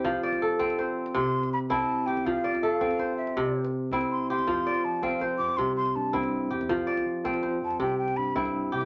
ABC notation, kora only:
X:1
M:12/8
L:1/8
Q:3/8=108
K:F
V:1 name="Kora"
G d A2 c3 z2 C2 G- | G d A2 c3 z2 C2 G- | G d3 c3 z2 C2 G- | G d3 c3 z2 C2 G |]
V:2 name="Kora" clef=bass
F,2 z C2 z C,2 z E2 z | F,2 z C2 z C,2 z E2 z | F,2 z C2 z C,2 z E2 z | F,2 z C2 z C,2 z E2 z |]